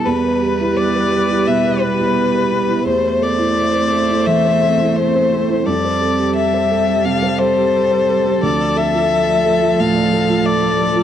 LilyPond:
<<
  \new Staff \with { instrumentName = "Violin" } { \time 4/4 \key e \phrygian \tempo 4 = 87 b'4 d''4 e''8 b'4. | c''8 d''4. e''4 c''4 | d''4 e''4 f''8 c''4. | d''8 e''4. f''4 d''4 | }
  \new Staff \with { instrumentName = "Viola" } { \time 4/4 \key e \phrygian b'1 | c''1 | a'1~ | a'1 | }
  \new Staff \with { instrumentName = "Felt piano" } { \time 4/4 \key e \phrygian e,16 b'16 g'16 e'8 b'16 g'16 e'16 b,16 b'16 g'16 e'8 b'16 g'16 e'16 | e,16 c''16 a'16 e'8 c''16 a'16 e'16 e16 c''16 a'16 e'8 c''16 a'16 e'16 | f,16 c''16 a'16 g'8 c''16 a'16 g'16 c16 c''16 a'16 g'8 c''16 a'16 g'16 | d,16 d''16 a'16 f'8 d''16 a'16 f'16 a,16 d''16 a'16 f'8 d''16 a'16 f'16 | }
  \new Staff \with { instrumentName = "Ambient pad" } { \time 4/4 \key e \phrygian << { e''1~ | e''1 | g''1 | f'1 | } \\ { <b g'>1 | <c' a'>1~ | <c' a'>1 | <a a'>1 | } >> }
  \new Staff \with { instrumentName = "Cello" } { \clef bass \time 4/4 \key e \phrygian g1 | a1 | g1 | f1 | }
>>